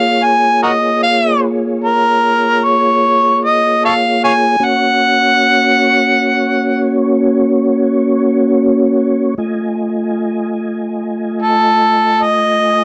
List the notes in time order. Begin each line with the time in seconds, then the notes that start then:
Already playing: A#3 F4 G#4 C#5 F5
0.23 G#5
0.63 F#4 A#4 D#5
1.03 F5
1.84 A#4
2.64 C#5
3.45 D#5
3.85 A4 C#5 F5
4.24 C#5 F5 G#5
4.60 A#3 C#4 F#4 C#5
4.64 F#5
9.38 A3 F4 D#5 G#5
11.42 A4
12.23 D#5